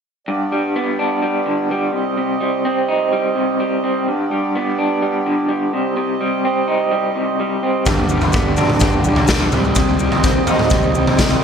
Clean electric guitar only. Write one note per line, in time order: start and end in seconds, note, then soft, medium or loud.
0.28 1.46 G2 medium
0.52 1.22 G3 medium
0.76 1.94 B3 medium
0.99 1.94 D4 medium
1.22 1.71 G3 medium
1.46 1.93 D3 medium
1.71 2.40 G3 medium
1.93 2.16 C3 medium
2.18 3.34 C3 medium
2.40 3.12 G3 medium
2.65 3.82 C4 medium
2.88 4.07 D#4 medium
3.13 3.60 G3 medium
3.35 4.07 C3 medium
3.60 4.31 G3 medium
3.84 4.07 C4 medium
4.08 5.26 G2 medium
4.31 5.02 G3 medium
4.55 5.74 B3 medium
4.79 5.74 D4 medium
5.02 5.48 G3 medium
5.26 5.73 D3 medium
5.49 6.20 G3 medium
5.73 5.95 C3 medium
5.96 7.14 C3 medium
6.21 6.91 G3 medium
6.45 7.62 C4 medium
6.68 7.87 D#4 medium
6.91 7.40 G3 medium
7.16 7.87 C3 medium
7.40 8.10 G3 medium
7.63 7.87 C4 medium
7.87 9.05 G2 medium
8.11 8.80 G3 medium
8.33 9.52 B3 medium
8.56 9.52 D4 medium
8.80 9.28 G3 medium
9.03 9.52 D3 medium
9.28 9.99 G3 medium
9.52 9.75 C3 medium
9.77 10.95 C3 medium
10.00 10.71 G3 medium
10.24 11.42 C4 medium
10.48 11.44 D#4 medium
10.72 11.17 G3 medium
10.96 11.44 C3 medium
11.17 11.44 G3 medium